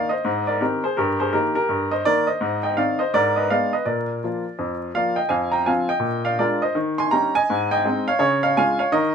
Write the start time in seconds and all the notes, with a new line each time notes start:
Already playing: F5
0.09 C5 D#5
0.25 G#2
0.47 A#4 D5
0.60 D#3 C4 D#4 G4 A#4
0.84 G#4 C5
0.97 G2 G4 A#4
1.20 G#4 C5
1.33 D#3 A#3 D#4 G4 A#4
1.55 G4 A#4
1.69 G2
1.91 C5 D#5
2.05 D#3 A#3 D#4 A#4 D5
2.27 C5 D#5
2.41 G#2
2.63 D#5 G5
2.77 D#3 C4 D#4 D5 F5
2.99 C5 D#5
3.14 G#2 A#4 D5
3.36 B4 D#5
3.50 G#3 B3 D#4 D5 F5
3.73 B4 D#5
3.86 A#2 A#4 D5
4.24 F3 A#3 F4
4.59 F2
4.95 F3 A#3 F4 D5 F5
5.16 D#5 G5
5.29 F2 F5 G#5
5.52 G5 A#5
5.66 F3 C4 F4 F5 G#5
5.89 D#5 G5
6.00 A#2
6.25 D5 F5
6.39 G#3 D4 F4 A#4 D5
6.62 C5 D#5
6.75 D#3
6.98 G#5 C6
7.11 G3 C#4 D#4 G5 A#5
7.35 D#5 G#5
7.50 G#2
7.71 D#5 G5
7.85 G#3 C4 D#4
8.08 C#5 F5
8.19 C#3 G#4 C#5
8.43 C#5 F5
8.57 G#3 C#4 F4 F5 G#5
8.79 C#5 F5
8.92 D#3 A#4 D#5